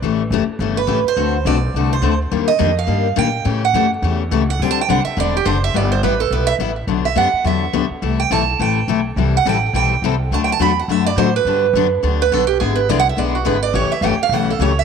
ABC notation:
X:1
M:4/4
L:1/8
Q:"Swing" 1/4=210
K:G
V:1 name="Steel-string acoustic guitar"
z4 z B2 c- | c2 d3 c2 z | z _e2 =f3 g2- | g f2 z4 f |
(3g a g f e d G c e | d c B A B e z2 | z e f2 e3 z | z g a2 g3 z |
z f g2 g3 z | (3a g a b f e d c B- | B4 z B A G | ^G B (3d f e d F B d |
^c e g =f ^f A c e |]
V:2 name="Steel-string acoustic guitar"
[^C,E,A,^CG] z [C,E,A,CG] z [C,E,A,CG] z [C,E,A,CG] z | [D,A,CFA] z [D,A,CFA] z [D,A,CFA] z [D,A,CFA] z | [_E,G,_B,DG] z [E,G,B,DG] z [E,G,B,DG] z [E,G,B,DG] z | [^C,E,A,^CG] z [C,E,A,CG] z [C,E,A,CG] z [C,E,A,CG] z |
[D,G,CDG] z [D,G,CDG] z [D,G,CDG] z [D,G,CDG] z | [G,B,EG] z [G,B,EG] z [G,B,EG] z [G,B,EG] z | [D,F,B,DG] z [D,F,B,DG] z [D,F,B,DG] z [D,F,B,DG] z | [C,E,A,EA] z [C,E,A,EA] z [C,E,A,EA] z [C,E,A,EA] z |
[C,E,G,CEA] z [C,E,G,CEA] z [C,E,G,CEA] z [C,E,G,CEA] z | [D,F,A,DF] z [D,F,A,DF] z [D,F,A,DF] z [D,F,A,DF] z | [D,F,B,DG] z [D,F,B,DG] z [D,F,B,DG] z [D,F,B,DG] z | [D,^G,B,E^G] z [D,G,B,EG] z [D,G,B,EG] z [D,G,B,EG] z |
[^C,E,A,^CG] z [C,E,A,CG] z [C,E,A,CG] z [C,E,A,CG] z |]
V:3 name="Upright bass" clef=bass
A,,,2 F,,, z G,,,2 A,,, z | D,,2 B,,,2 C,,2 D,,2 | _E,,2 =F,,2 G,,2 _B,,2 | A,,2 F,,2 E,,2 ^C,,2 |
D,,2 C,, z E,,,2 F,,,2 | G,,,2 A,,,2 B,,,2 A,,,2 | B,,,2 F,, z E,,2 D,, z | C,,2 B,,,2 A,,,2 B,,,2 |
C,,2 A,,,2 B,,,2 C,,2 | D,,2 E,,2 F,,2 A,,2 | G,,2 F,,2 D,,2 B,,,2 | ^G,,,2 C,,2 B,,,2 G,,,2 |
A,,, z G,,, z B,,,2 ^C,,2 |]